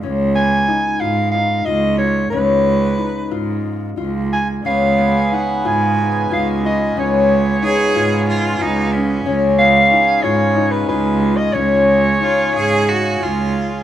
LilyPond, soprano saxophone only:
\new Staff \with { instrumentName = "Soprano saxophone" } { \time 7/8 \key des \mixolydian \tempo 4 = 91 r8 aes''4 f''8 f''8 ees''8 des''8 | ces''2 r4 aes''8 | f''4 ges''8 aes''4 f''8 ees''8 | des''2. r8 |
r8 f''4 des''8. ces''16 ces''8. ees''16 | des''2. r8 | }